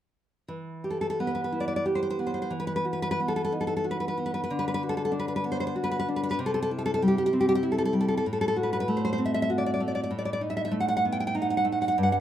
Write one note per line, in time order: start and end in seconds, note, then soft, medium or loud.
0.48 2.46 E3 soft
0.84 1.84 G4 soft
0.90 1.00 A4 soft
1.01 1.09 A4 soft
1.10 1.18 A4 medium
1.20 2.18 B3 soft
1.27 1.34 B4 soft
1.35 1.43 B4 soft
1.44 1.52 B4 soft
1.52 2.52 E4 soft
1.60 1.67 D5 medium
1.68 1.75 D5 soft
1.76 1.84 D5 medium
1.86 2.52 G4 soft
1.95 2.01 C5 soft
2.03 2.09 C5 soft
2.10 2.18 C5 soft
2.19 2.52 B3 soft
2.27 2.33 C5 soft
2.34 2.41 C5 soft
2.42 2.51 C5 soft
2.50 4.45 E3 soft
2.60 2.66 B4 medium
2.67 2.75 B4 medium
2.76 2.85 B4 medium
2.85 3.83 F#4 soft
2.93 3.01 B4 soft
3.02 3.10 B4 medium
3.11 3.19 B4 medium
3.20 4.16 B3 soft
3.28 3.35 A4 medium
3.36 3.43 A4 soft
3.45 3.52 A4 medium
3.52 4.49 D#4 soft
3.61 3.66 A4 soft
3.67 3.75 A4 soft
3.77 3.85 A4 medium
3.84 4.49 F#4 soft
3.91 3.99 B4 medium
4.00 4.07 B4 soft
4.08 4.17 B4 medium
4.17 4.49 B3 soft
4.26 4.33 B4 soft
4.34 4.42 B4 soft
4.44 4.50 B4 medium
4.50 6.34 D3 soft
4.59 4.66 B4 medium
4.68 4.73 B4 medium
4.74 4.81 B4 medium
4.83 5.74 F#4 soft
4.89 4.96 A4 medium
4.97 5.04 A4 medium
5.05 5.12 A4 medium
5.12 6.06 D4 soft
5.19 5.27 B4 medium
5.28 5.35 B4 soft
5.36 5.43 B4 medium
5.44 6.38 B3 soft
5.52 5.59 C5 medium
5.60 5.66 C5 medium
5.67 5.75 C5 medium
5.76 6.38 F#4 soft
5.84 5.90 B4 medium
5.91 5.98 B4 medium
5.99 6.07 B4 medium
6.08 6.39 D4 soft
6.16 6.22 B4 medium
6.23 6.29 B4 medium
6.31 6.38 B4 medium
6.39 8.21 C3 medium
6.46 6.53 A4 medium
6.54 6.61 A4 medium
6.62 6.69 A4 medium
6.71 7.62 E4 soft
6.79 6.84 A4 medium
6.86 6.93 A4 medium
6.94 7.01 A4 medium
7.02 7.92 G3 soft
7.08 7.16 G4 medium
7.18 7.25 G4 medium
7.26 7.33 G4 medium
7.33 8.25 C4 soft
7.41 7.47 G4 medium
7.49 7.54 G4 medium
7.55 7.63 G4 medium
7.63 8.24 E4 soft
7.72 7.77 A4 soft
7.78 7.84 A4 medium
7.85 7.93 A4 medium
7.93 8.24 G3 soft
8.01 8.07 A4 medium
8.08 8.16 A4 medium
8.17 8.25 A4 medium
8.26 10.07 A2 medium
8.33 8.40 A4 medium
8.41 8.47 A4 medium
8.48 8.56 A4 medium
8.56 9.49 F#4 soft
8.63 8.71 B4 medium
8.73 8.79 B4 medium
8.80 8.88 B4 medium
8.88 9.79 A3 soft
8.97 9.04 C5 soft
9.05 9.11 C5 soft
9.13 9.19 C5 medium
9.18 10.10 C4 soft
9.26 9.33 E5 medium
9.34 9.41 E5 medium
9.42 9.49 E5 medium
9.50 10.11 F#4 soft
9.58 9.65 D5 soft
9.66 9.72 D5 medium
9.74 9.80 D5 soft
9.80 10.10 A3 soft
9.88 9.94 D5 soft
9.95 10.02 D5 soft
10.04 10.11 D5 soft
10.11 11.92 A2 soft
10.19 10.24 D5 medium
10.25 10.32 D5 medium
10.33 10.41 D5 medium
10.41 11.33 D#4 soft
10.50 10.56 E5 soft
10.57 10.64 E5 medium
10.65 10.72 E5 medium
10.71 11.63 A3 soft
10.80 10.87 F#5 medium
10.88 10.95 F#5 medium
10.97 11.04 F#5 medium
11.05 11.97 B3 soft
11.12 11.19 G5 medium
11.20 11.26 G5 medium
11.27 11.35 G5 medium
11.35 11.96 D#4 soft
11.42 11.49 F#5 medium
11.50 11.56 F#5 soft
11.57 11.65 F#5 medium
11.65 11.96 A3 soft
11.72 11.80 F#5 soft
11.82 11.87 F#5 medium
11.88 11.96 F#5 medium
11.98 12.20 G2 medium
12.03 12.11 F#5 soft
12.12 12.18 F#5 medium